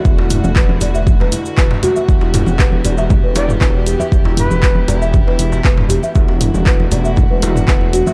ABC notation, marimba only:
X:1
M:4/4
L:1/16
Q:1/4=118
K:Em
V:1 name="Marimba"
z E E z B z d e z B E z B z F e | z E E z B z d e z B E z B z G e | z E E z B z d e z B E z B z G e | z E E z B z d e z B E z B z F e |]